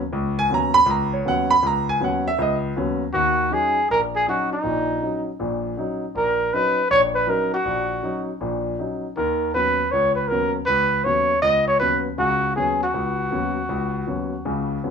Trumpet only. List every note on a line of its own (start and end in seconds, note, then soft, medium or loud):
3.13 3.55 F#4 medium
3.53 3.90 G#4 medium
3.91 4.01 A#4 medium
4.15 4.27 G#4 medium
4.29 4.50 F#4 medium
4.53 5.23 D#4 medium
6.16 6.55 A#4 medium
6.53 6.90 B4 loud
6.91 7.01 C#5 medium
7.15 7.31 B4 medium
7.29 7.53 A#4 medium
7.54 8.24 F#4 medium
9.17 9.52 A#4 medium
9.54 9.93 B4 medium
9.91 10.14 C#5 medium
10.15 10.29 B4 medium
10.28 10.53 A#4 medium
10.66 11.06 B4 loud
11.04 11.41 C#5 medium
11.42 11.65 D#5 medium
11.67 11.79 C#5 medium
11.79 12.02 B4 medium
12.19 12.53 F#4 medium
12.56 12.78 G#4 medium
12.83 14.79 F#4 medium